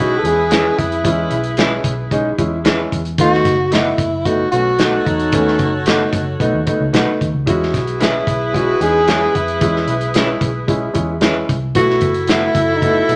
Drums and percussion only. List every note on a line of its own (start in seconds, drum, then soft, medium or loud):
0.25 closed hi-hat medium
0.51 snare medium
0.51 closed hi-hat medium
0.79 kick medium
0.79 closed hi-hat medium
0.92 closed hi-hat soft
1.05 kick medium
1.05 closed hi-hat medium
1.31 closed hi-hat medium
1.44 closed hi-hat soft
1.57 snare loud
1.57 closed hi-hat medium
1.84 kick medium
1.84 closed hi-hat medium
2.11 kick medium
2.11 closed hi-hat medium
2.39 kick medium
2.39 closed hi-hat medium
2.65 snare medium
2.65 closed hi-hat medium
2.92 kick medium
2.92 closed hi-hat medium
3.05 closed hi-hat soft
3.18 kick loud
3.18 closed hi-hat medium
3.34 snare soft
3.45 kick medium
3.45 snare soft
3.45 closed hi-hat medium
3.72 snare loud
3.72 closed hi-hat medium
3.98 kick medium
3.98 closed hi-hat medium
4.25 kick medium
4.25 closed hi-hat medium
4.52 closed hi-hat medium
4.79 snare loud
4.79 closed hi-hat medium
5.06 kick medium
5.06 closed hi-hat medium
5.20 closed hi-hat soft
5.32 kick loud
5.32 closed hi-hat medium
5.48 snare soft
5.59 kick medium
5.59 closed hi-hat medium
5.86 snare loud
5.86 closed hi-hat medium
6.13 kick medium
6.13 closed hi-hat medium
6.40 kick medium
6.40 closed hi-hat medium
6.67 kick medium
6.67 closed hi-hat medium
6.94 snare loud
6.94 closed hi-hat medium
7.21 kick medium
7.21 closed hi-hat medium
7.47 kick loud
7.47 closed hi-hat medium
7.63 snare soft
7.74 kick medium
7.74 snare soft
7.74 closed hi-hat medium
7.87 closed hi-hat soft
8.00 snare medium
8.00 closed hi-hat medium
8.27 kick loud
8.27 closed hi-hat medium
8.54 kick medium
8.54 closed hi-hat medium
8.81 closed hi-hat medium
9.08 snare loud
9.08 closed hi-hat medium
9.35 kick medium
9.35 closed hi-hat medium
9.48 closed hi-hat soft
9.61 kick loud
9.61 closed hi-hat medium
9.76 snare soft
9.88 closed hi-hat medium
10.01 closed hi-hat soft
10.14 snare loud
10.14 closed hi-hat medium
10.41 kick medium
10.41 closed hi-hat medium
10.68 kick medium
10.68 closed hi-hat medium
10.95 kick medium
10.95 closed hi-hat medium
11.21 snare loud
11.21 closed hi-hat medium
11.49 kick medium
11.49 closed hi-hat medium
11.75 kick loud
11.75 closed hi-hat medium
11.90 snare soft
12.01 kick medium
12.01 closed hi-hat medium
12.14 closed hi-hat soft
12.28 snare loud
12.28 closed hi-hat medium
12.55 kick medium
12.55 closed hi-hat medium
12.82 kick medium
12.82 closed hi-hat medium
13.09 closed hi-hat medium